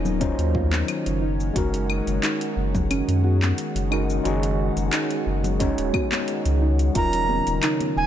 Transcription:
Already playing: D#1 D#3 F#3 A#3 C#4 D#4 F4 G#4 A#4
0.05 high conga, low conga, shaker
0.20 F#3 C#4 D#4 F4 C5, kick, closed hi-hat, shaker
0.38 D#2, closed hi-hat, shaker
0.55 F4, kick, high conga
0.72 clap, high conga, shaker
0.88 closed hi-hat, claves, shaker
1.06 F#1, closed hi-hat, shaker
1.22 D#3 G#3 D#4 F#4
1.40 shaker
1.54 F#1 G#3 C#4 D#4 F#4, kick, closed hi-hat, shaker
1.58 A#4
1.74 closed hi-hat, shaker
1.90 claves
2.07 F#1, closed hi-hat, shaker
2.23 D#4, clap, closed hi-hat, shaker
2.41 closed hi-hat, shaker
2.57 F#1
2.75 kick, high conga, low conga, shaker
2.91 C#4, closed hi-hat, claves, shaker
3.08 F#2, closed hi-hat, shaker
3.24 F#4, high conga
3.42 clap, high conga, shaker
3.58 closed hi-hat, shaker
3.75 F#1, closed hi-hat, shaker
3.91 G#3 C#4 D#4 F#4 A#4, claves
4.10 shaker
4.23 F#1 G#3 C#4 D#4 F#4, closed hi-hat, shaker
4.28 G#4
4.43 closed hi-hat, shaker
4.77 F#1, closed hi-hat, shaker
4.93 D#4, clap, closed hi-hat, claves, shaker
5.11 closed hi-hat, shaker
5.26 F#1
5.44 closed hi-hat, high conga, low conga, shaker
5.59 G#3 C#4 D#4 F#4 C#5, kick, closed hi-hat, shaker
5.78 D#1, closed hi-hat, shaker
5.93 F#4, kick, high conga, claves
6.12 clap, closed hi-hat, high conga, shaker
6.28 closed hi-hat, shaker
6.45 C#2, closed hi-hat, shaker
6.62 D#4
6.79 closed hi-hat, shaker
6.93 D#1 C#3 D#3 F#3 A#3 C#4 D#4 F4 A#5, kick, closed hi-hat, shaker
6.98 A#4
7.13 closed hi-hat, shaker
7.29 high conga
7.47 D#1, closed hi-hat, shaker
7.63 D#4, clap, closed hi-hat, claves, shaker
7.80 closed hi-hat, high conga, shaker
7.97 D#1 G#5

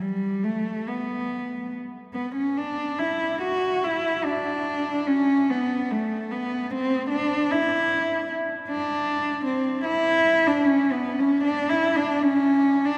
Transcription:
0.02 G3
0.44 A3
0.89 B3
2.13 B3
2.35 C#4
2.57 D4
2.99 E4
3.42 F#4
3.84 E4
4.24 D4
5.07 C#4
5.50 B3
5.91 A3
6.31 B3
6.71 C4
7.10 D4
7.51 E4
8.69 D4
9.46 C4
9.85 E4
10.47 D4
10.65 C#4
10.92 B3
11.19 C#4
11.44 D4
11.70 E4
11.96 D4
12.22 C#4
12.85 D4

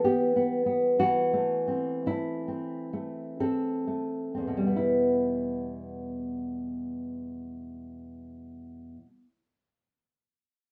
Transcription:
Already playing: E3
0.04 B3 G4
0.36 B3
0.66 B3
0.99 E3 F#4
1.33 A3
1.68 C4
2.06 A3 E4
2.48 C4
2.93 A3
3.40 C4 A4
3.87 A3
4.35 E2 C4
4.47 B2
4.57 G3
4.67 B3
4.76 E4

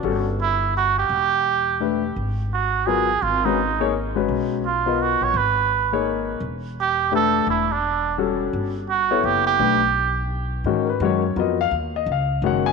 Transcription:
Already playing: C#3 B4 D5
0.03 G1 G3 C#4 F#4 A4
0.42 E4
0.77 F#4
0.99 G4
1.09 E1
1.80 A3 D4 G4 B4
2.16 G#1
2.53 F#4
2.87 F#3 B3 F4 G#4 A#4
3.22 G#1 F4
3.45 G#3 C#4 D#4 F#4 B4
3.80 A#3 D#4 G#4 C#5
4.15 G#3 C#4 F#4 B4
4.28 B1
4.66 F4
4.86 B3 F4 A#4 D#5
5.02 F#4
5.21 A#1 C#5
5.34 G#1 B4
5.92 A#3 D#4 G#4 C#5
6.40 E1
6.81 G4
7.11 A3 D4 G4 B4
7.16 A4
7.47 E1 E4
7.72 D4
8.18 G3 C#4 F#4 A4
8.53 G1
8.90 F#4
9.11 B3 E4 A4 C#5
9.24 F#1 G4
9.47 G4
9.59 B1 A3 D4 G4 B4
10.64 G#2 D#3 G#3 C#4 F#4
10.85 A#4
10.89 B4
11.00 F#2 D#3 G#3 C#4 F#4
11.05 C#5
11.36 F2 F#3 B3 F4 A#4 D#5
11.61 F5
11.71 D#2
11.96 D#5
12.06 C#2
12.12 F5
12.42 F#1 D#3 G#3 C#4 F#4
12.46 F#5
12.66 G#5

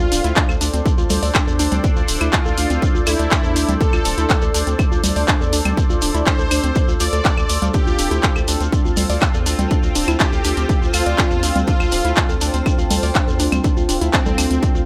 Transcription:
Already playing: D4 F4 A4 C5 D5 G5
0.04 E6
0.12 D1 D4, open hi-hat, shekere
0.24 D2 E4, closed hi-hat, shekere
0.36 D4, kick, clap, closed hi-hat, shekere
0.49 D2 A4, claves, shekere
0.54 A4
0.61 D2 D4, open hi-hat, shekere
0.74 D2 C4, closed hi-hat, shekere
0.85 D4, kick, closed hi-hat, shekere
0.98 D2 F4, shekere
1.10 D2 A4, open hi-hat, low conga, shekere
1.23 D2 D5, open hi-hat, shekere
1.34 D4, kick, clap, closed hi-hat, claves, shekere
1.47 E2 A4, shekere
1.59 D2 D4, open hi-hat, shekere
1.71 D2 C4, closed hi-hat, low conga, shekere
1.84 D4, kick, closed hi-hat, shekere
1.96 D2 F4, shekere
2.08 D1 D4, open hi-hat, shekere
2.21 D2 E4, closed hi-hat, claves, shekere
2.33 D4 F4, kick, clap, closed hi-hat, shekere
2.45 D2 A4, shekere
2.58 D2 D4, open hi-hat, shekere
2.70 D2 C4, closed hi-hat, shekere
2.82 D4, kick, closed hi-hat, shekere
2.95 D2 F4, shekere
3.07 D2 E4 A4, open hi-hat, claves, shekere
3.19 D2 D5, closed hi-hat, shekere
3.31 D4, kick, clap, closed hi-hat, shekere
3.44 E2 A4, shekere
3.56 D2 D4, open hi-hat, shekere
3.69 D2 C4, closed hi-hat, low conga, shekere
3.81 D4 A4, kick, closed hi-hat, shekere
3.93 D2 F4, claves, shekere
4.05 D1 D4, open hi-hat, shekere
4.18 D2 E4, closed hi-hat, shekere
4.30 D4, kick, clap, closed hi-hat, shekere
4.41 D2 A4, shekere
4.54 D2 D4, open hi-hat, shekere
4.67 D2 C4, closed hi-hat, shekere
4.79 D4, kick, closed hi-hat, claves, shekere
4.92 D2 F4, shekere
5.04 D2 A4, open hi-hat, low conga, shekere
5.16 D2 D5, open hi-hat, shekere
5.28 D4, kick, clap, closed hi-hat, shekere
5.41 E2 A4, shekere
5.53 D2 D4, open hi-hat, shekere
5.65 D2 C4, closed hi-hat, low conga, claves, shekere
5.77 D4, kick, closed hi-hat, shekere
5.90 D2 F4, shekere
6.02 D1 D4, open hi-hat, shekere
6.14 D2 E4, closed hi-hat, shekere
6.26 D4 C5, kick, clap, closed hi-hat, shekere
6.39 D2 A4, shekere
6.51 D2 D4, open hi-hat, claves, shekere
6.63 D2 C4, closed hi-hat, shekere
6.75 D4, kick, closed hi-hat, shekere
6.88 D2 F4, shekere
7.00 D2 F4 D5, open hi-hat, shekere
7.13 D2 A4, closed hi-hat, shekere
7.25 D4, kick, clap, closed hi-hat, shekere
7.37 D2 A4, claves, shekere
7.49 D2 D5, open hi-hat, shekere
7.62 D2 F5, closed hi-hat, low conga, shekere
7.74 C4 D4 F4 G4, kick, closed hi-hat, shekere
7.87 D2 F4, shekere
7.99 D1 D4, open hi-hat, shekere
8.11 D2 E4, closed hi-hat, shekere
8.23 D4 C5, kick, clap, closed hi-hat, shekere
8.36 D2 A4, claves, shekere
8.48 D2 D4, open hi-hat, shekere
8.60 D2 C4, closed hi-hat, shekere
8.72 D4, kick, closed hi-hat, shekere
8.85 D2 F4 G5, shekere
8.97 D2 A4, open hi-hat, low conga, shekere
9.10 D2 D5, open hi-hat, shekere
9.22 D4, kick, clap, closed hi-hat, claves, shekere
9.34 E2 A4, shekere
9.46 D2 D4, open hi-hat, shekere
9.59 D2 C4, closed hi-hat, low conga, shekere
9.71 D4, kick, closed hi-hat, shekere
9.83 D2 F4, shekere
9.95 D1 D4, open hi-hat, shekere
10.08 D2 E4, closed hi-hat, claves, shekere
10.20 D4 G4, kick, clap, closed hi-hat, shekere
10.32 D2 A4, shekere
10.44 D2 D4, open hi-hat, shekere
10.57 D2 C4, closed hi-hat, shekere
10.69 D4, kick, closed hi-hat, shekere
10.82 D2 F4, shekere
10.93 D2 F4 A4, open hi-hat, claves, shekere
11.06 D2 D5, closed hi-hat, shekere
11.18 D4, kick, clap, closed hi-hat, shekere
11.31 E2 A4, shekere
11.43 D2 D4, open hi-hat, shekere
11.55 D2 C4, closed hi-hat, low conga, shekere
11.67 D4 F4, kick, closed hi-hat, shekere
11.80 D2 F4, claves, shekere
11.91 D1 D4, open hi-hat, shekere
12.05 D2 E4, closed hi-hat, shekere
12.17 D4, kick, clap, closed hi-hat, shekere
12.29 D2 A4, shekere
12.41 D2 D4, open hi-hat, shekere
12.54 D2 C4, closed hi-hat, shekere
12.66 D4, kick, closed hi-hat, claves, shekere
12.78 D2 F4, shekere
12.90 D2 A4, open hi-hat, low conga, shekere
13.03 D2 D5, open hi-hat, shekere
13.15 D4, kick, clap, closed hi-hat, shekere
13.28 E2 A4, shekere
13.39 D2 D4, open hi-hat, shekere
13.52 D2 C4, closed hi-hat, low conga, claves, shekere
13.64 D4, kick, closed hi-hat, shekere
13.77 D2 F4, shekere
13.89 D1 D4, open hi-hat, shekere
14.01 D2 E4, closed hi-hat, shekere
14.13 C4 D4, kick, clap, closed hi-hat, shekere
14.26 D2 A4, low conga, shekere
14.38 D2 D4, open hi-hat, claves, shekere
14.51 D2 C4, closed hi-hat, shekere
14.63 D4, kick, closed hi-hat, shekere
14.75 D2 F4, shekere

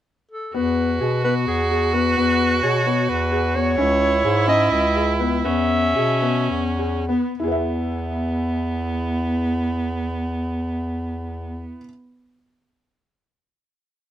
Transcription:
0.31 A4
0.54 E2 B3 F#4 B4
1.01 B2 G#4
1.24 B3 B4
1.47 E2 G#4
1.71 G#4
1.94 B3 B4
2.17 E2 B3
2.63 B2 G#4 C#5
2.86 B3
3.09 E2 B4
3.32 G#4
3.55 B3 C#5
3.78 C#2 C#4 E4
4.24 G#2 G#4
4.48 C#4 D#5
4.71 C#2 D#5
4.95 G#4
5.20 B3
5.44 E2 B3 C#4 E5
5.96 B2 G#4
6.22 B3
6.50 E2
6.79 G#4
7.09 B3
7.40 E2 B3 E4 G#4
7.48 B4
7.52 E5

